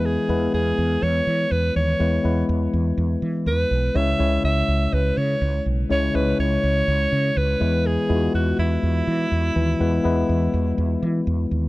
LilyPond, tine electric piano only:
<<
  \new Staff \with { instrumentName = "Tine electric piano" } { \time 4/4 \key e \major \tempo 4 = 123 <gis b e' b'>8 <gis b e' b'>4 r2 r8 | <gis b e' b'>8 <gis b e' b'>4 r2 r8 | <gis cis' e' cis''>8 <gis cis' e' cis''>4 r2 r8 | <gis cis' e' cis''>8 <gis cis' e' cis''>4 r2 <gis b e' b'>8~ |
<gis b e' b'>8 <gis b e' f' fis'>4 r2 r8 | <gis b e' b'>8 <gis b e' b'>4 r2 r8 | }
  \new Staff \with { instrumentName = "Tine electric piano" } { \clef bass \time 4/4 \key e \major e4 r2 r8 e8~ | e4 r2. | cis4. r2 r8 | cis4. r2 e8~ |
e4 r2 r8 e8~ | e4 r2. | }
>>